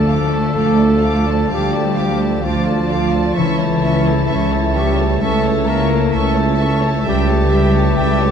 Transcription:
Already playing: D2 D3 F3 A3 A4 D5 A5
0.09 F3 F4 F5 D6
0.32 A3 A4 D5 A5
0.55 D2 F3 F5 D6
0.78 A3 D5 A5 D6
1.01 F3 F5 D6
1.25 A3 A4 D5 A5
1.49 D2 F3 G3 D4 F5 G5 D6
1.54 G4
1.72 A3 D5 A5
1.96 F3 F4 F5 D6
2.20 A3 A4 D5 A5
2.41 D2 F3 F4 F5 D6
2.46 A5
2.66 A3 D5 A5 D6
2.88 F3 F5 D6
3.11 A3 A4 D5 A5
3.34 C#2 C#3 E3 E5 A5 C#6
3.38 C#2 E3 C#4 E4
3.59 A3 C#5 A5
3.82 C#4 E4 E5 C#6
4.06 A3 A4 C#5 A5
4.28 C#2 C#4 E5 C#6
4.51 A3 C#5 A5 E6
4.74 G3 C#4 G4 E5 G5 C#6
4.98 A3 A4 C#5 A5
5.20 C#2 C#3 A3 C#4 A4 E5 A5 C#6
5.24 E3
5.44 A3 C#5 A5
5.65 A#3 C#4 E4 E5 A#5 C#6
5.69 A#4
5.90 A3 A4 C#5 A5
6.12 C#2 E3 A3 C#4 A4 E5 A5 C#6
6.35 A3 C#5 A5 E6
6.58 C#4 E5 C#6
6.78 A4 C#5
6.84 A3 A5
7.03 C#2 C#3 E3 G3 E5 G5 A5
7.07 G3 G4
7.27 A3 C#5 A5
7.51 G3 A4 E5 G5
7.74 A3 C#5 E5 A5
7.98 C#2 G3 E5 G5 A5
8.20 A3 C#5 A5 E6

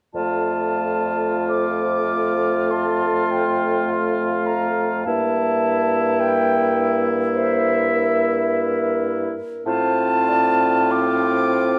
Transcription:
0.14 F2 A3 F4 D5 A5
1.49 C5 D6
2.71 A5 C6
3.31 G5
3.89 F5
4.47 A#5
5.05 G2 A#3 E4 E5 A5
6.20 G5
7.36 C5 E5
7.93 A#4
9.66 A2 C4 F4 C5 A5
10.29 D5
10.90 C5 D6

